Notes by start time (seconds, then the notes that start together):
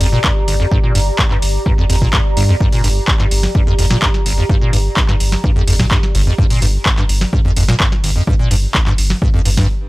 Already playing: G4 D5 A#5
0.01 G1 F2, open hi-hat
0.13 A#2
0.24 G2, kick, clap
0.48 G1, open hi-hat
0.60 F2
0.71 G2, kick
0.83 A#2
0.95 G1 G2, open hi-hat
1.19 G2, kick, clap
1.31 G2, clap
1.42 G1, open hi-hat
1.66 G2, kick
1.78 F2
1.90 G1 F2, open hi-hat
2.02 A#2, kick
2.13 G2, kick, clap
2.37 G1 G2, open hi-hat
2.49 F2
2.60 G2, kick
2.72 A#2, open hi-hat
2.84 G1 G2, open hi-hat
3.08 G2, kick, clap
3.20 G2, snare, clap
3.31 G1, open hi-hat
3.43 snare
3.55 G2, kick
3.67 F2
3.79 G1 F2, open hi-hat
3.91 A#2, snare
4.02 G2, kick, clap
4.14 snare
4.26 G1, open hi-hat
4.38 F2
4.49 G2, kick
4.61 A#2
4.73 G1 G2, open hi-hat
4.97 G2, kick, clap
5.09 G2, snare, clap
5.20 G1, open hi-hat
5.32 snare
5.44 G2, kick
5.56 F2
5.68 G1 F2, open hi-hat
5.80 A#2, kick, snare
5.91 G2, kick, clap
6.03 snare
6.15 G1, open hi-hat
6.27 F2
6.38 G2, kick
6.50 A#2, open hi-hat
6.62 G1 G2, open hi-hat
6.86 G2, kick, clap
6.98 G2, snare, clap
7.09 G1, open hi-hat
7.21 snare
7.33 G2, kick
7.45 F2
7.56 G1 F2, open hi-hat
7.68 A#2, snare
7.80 G2, kick, clap
7.92 snare
8.04 G1, open hi-hat
8.16 F2
8.27 G2, kick
8.39 A#2
8.51 G1 G2, open hi-hat
8.75 G2, kick, clap
8.87 G2, snare, clap
8.98 G1, open hi-hat
9.10 snare
9.22 G2, kick
9.34 F2
9.45 G1 G2, open hi-hat
9.57 G2, kick, snare, open hi-hat